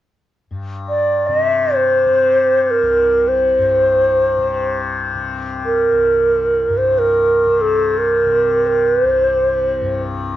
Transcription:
0.51 G2
0.89 D5
1.27 C3 D#5
1.44 E5
1.75 C5
2.06 C3
2.71 A#4
2.82 C2
3.28 C5
3.59 G2
4.38 C3
5.15 C3
5.65 A#4
5.93 C2
6.69 G2
6.77 C5
6.99 A#4
7.46 C3
7.61 A4
7.98 A#4
8.26 C3
8.67 A#4
8.92 B4
9.04 C2 C5
9.81 G2

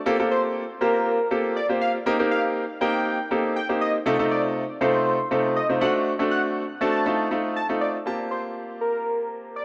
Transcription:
0.06 A#3 C4 F4 G4 A4
0.19 A#3 C4 F4 G4 A4
0.31 C5
0.81 A#3 C4 F4 G4 A#4 C5
1.31 A#3 C4 F4 G4 A4
1.56 D5
1.69 A#3 C4 F4 G4 C5
1.81 F5
2.06 A#3 C4 D#4 G4 A#4
2.19 A#3 C4 D#4 G4 A#4
2.31 F5
2.81 A#3 C4 D#4 G4 A#4 G5
3.31 A#3 C4 D#4 G4 A4
3.56 G5
3.69 A#3 C4 D#4 G4 C5
3.81 D#5
4.06 C3 A3 C4 D#4 F4 A4
4.19 C3 A3 C4 D#4 F4 A4
4.31 D5
4.81 C3 A3 C4 D#4 F4 A4 C5
5.31 C3 A3 C4 D#4 F4 A4
5.56 D#5
5.69 C3 A3 C4 D#4 F4 C5
5.81 A3 C4 D4 F#4 A4 F#5
6.19 A3 C4 D4 F#4 A4
6.31 F#5
6.81 A3 C4 D4 F#4 A4 A5
7.06 A3 C4 D#4 F4 A4
7.31 A3 C4 D#4 F4 A4
7.56 A5
7.69 A3 C4 D#4 F4 A4
7.81 D5
8.06 A#3 C4 F4 G4 A5
8.31 C5
8.81 A#4
9.56 D5

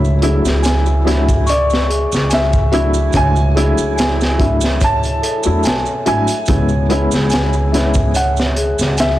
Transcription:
Already playing: C#2 F#3 A3 D4 E4 C#5 E5
0.05 maracas
0.22 F#3 A3 D4 E4 G#4, closed hi-hat
0.45 C#2, snare, maracas
0.63 G#5, snare, closed hi-hat, maracas
0.86 maracas
1.05 F#3 A3 D4 E4 E5, closed hi-hat
1.09 snare
1.29 kick, maracas
1.46 D5 C#6, closed hi-hat, maracas
1.70 snare, maracas
1.88 G#4, closed hi-hat
2.12 C#2, snare, maracas
2.30 G#5, snare, closed hi-hat, maracas
2.34 E5
2.53 kick, maracas
2.71 F#3 A3 D4 E4 E5, closed hi-hat
2.94 maracas
3.13 C#2 F#3 A3 D4 E4 C#5 G#5, kick, closed hi-hat, maracas
3.36 maracas
3.55 F#3 A3 D4 E4 G#4, closed hi-hat
3.78 C#2, maracas
3.96 G#5, snare, closed hi-hat, maracas
4.21 snare, maracas
4.38 F#3 A3 D4 E4 E5, kick, closed hi-hat
4.61 snare, maracas
4.81 C#5 A5, kick, closed hi-hat, maracas
5.03 closed hi-hat, maracas
5.22 A4, closed hi-hat
5.43 E2 F#3 A3 D4 E4, maracas
5.63 B1 G#5, snare, closed hi-hat, maracas
5.86 maracas
6.06 G#1 F#3 A3 D4 E4 E5 G#5, closed hi-hat
6.27 closed hi-hat, maracas
6.46 C#2 G#3 B3 C#4 E4 C#5, kick, closed hi-hat, maracas
6.69 maracas
6.89 G#3 B3 C#4 E4 G#4, closed hi-hat
7.11 C#2, snare, maracas
7.30 G#5, snare, closed hi-hat, maracas
7.53 maracas
7.72 G#3 B3 C#4 E4 E5, closed hi-hat
7.76 snare
7.94 kick, maracas
8.14 C#5 F#5, closed hi-hat, maracas
8.37 snare, maracas
8.56 G#4, closed hi-hat
8.79 C#2, snare, maracas
8.97 E5 G#5, snare, closed hi-hat, maracas

